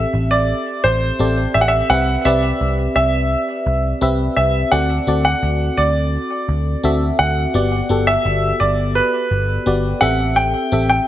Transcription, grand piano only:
0, 0, Header, 1, 2, 480
1, 0, Start_track
1, 0, Tempo, 705882
1, 1292, Time_signature, 4, 2, 24, 8
1, 7532, End_track
2, 0, Start_track
2, 0, Title_t, "Grand piano"
2, 0, Program_c, 0, 0
2, 0, Note_on_c, 0, 76, 91
2, 210, Note_on_c, 0, 74, 88
2, 225, Note_off_c, 0, 76, 0
2, 569, Note_on_c, 0, 72, 105
2, 582, Note_off_c, 0, 74, 0
2, 1050, Note_on_c, 0, 76, 85
2, 1065, Note_off_c, 0, 72, 0
2, 1097, Note_on_c, 0, 78, 76
2, 1100, Note_off_c, 0, 76, 0
2, 1143, Note_on_c, 0, 76, 92
2, 1146, Note_off_c, 0, 78, 0
2, 1290, Note_on_c, 0, 78, 100
2, 1295, Note_off_c, 0, 76, 0
2, 1532, Note_on_c, 0, 76, 94
2, 1538, Note_off_c, 0, 78, 0
2, 2000, Note_off_c, 0, 76, 0
2, 2010, Note_on_c, 0, 76, 93
2, 2704, Note_off_c, 0, 76, 0
2, 2968, Note_on_c, 0, 76, 83
2, 3193, Note_off_c, 0, 76, 0
2, 3206, Note_on_c, 0, 78, 91
2, 3558, Note_off_c, 0, 78, 0
2, 3568, Note_on_c, 0, 78, 97
2, 3927, Note_on_c, 0, 74, 87
2, 3941, Note_off_c, 0, 78, 0
2, 4888, Note_on_c, 0, 78, 102
2, 4918, Note_off_c, 0, 74, 0
2, 5488, Note_on_c, 0, 76, 107
2, 5508, Note_off_c, 0, 78, 0
2, 5847, Note_on_c, 0, 74, 86
2, 5861, Note_off_c, 0, 76, 0
2, 6088, Note_on_c, 0, 71, 86
2, 6097, Note_off_c, 0, 74, 0
2, 6805, Note_on_c, 0, 78, 95
2, 6832, Note_off_c, 0, 71, 0
2, 7045, Note_on_c, 0, 79, 107
2, 7056, Note_off_c, 0, 78, 0
2, 7398, Note_off_c, 0, 79, 0
2, 7409, Note_on_c, 0, 79, 107
2, 7532, Note_off_c, 0, 79, 0
2, 7532, End_track
0, 0, End_of_file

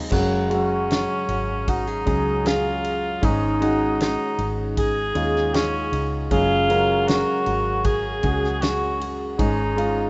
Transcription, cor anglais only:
0, 0, Header, 1, 2, 480
1, 0, Start_track
1, 0, Tempo, 773196
1, 71, Time_signature, 4, 2, 24, 8
1, 6269, End_track
2, 0, Start_track
2, 0, Title_t, "Cor anglais"
2, 0, Program_c, 0, 69
2, 330, Note_on_c, 0, 61, 86
2, 1052, Note_on_c, 0, 63, 96
2, 1061, Note_off_c, 0, 61, 0
2, 1531, Note_on_c, 0, 65, 98
2, 1540, Note_off_c, 0, 63, 0
2, 2013, Note_on_c, 0, 63, 103
2, 2023, Note_off_c, 0, 65, 0
2, 2490, Note_off_c, 0, 63, 0
2, 2494, Note_on_c, 0, 63, 95
2, 2781, Note_off_c, 0, 63, 0
2, 2971, Note_on_c, 0, 68, 103
2, 3444, Note_on_c, 0, 61, 95
2, 3453, Note_off_c, 0, 68, 0
2, 3800, Note_off_c, 0, 61, 0
2, 3920, Note_on_c, 0, 65, 114
2, 4392, Note_on_c, 0, 66, 102
2, 4401, Note_off_c, 0, 65, 0
2, 4874, Note_on_c, 0, 68, 105
2, 4883, Note_off_c, 0, 66, 0
2, 5349, Note_on_c, 0, 66, 93
2, 5359, Note_off_c, 0, 68, 0
2, 5664, Note_off_c, 0, 66, 0
2, 5830, Note_on_c, 0, 63, 98
2, 6269, Note_off_c, 0, 63, 0
2, 6269, End_track
0, 0, End_of_file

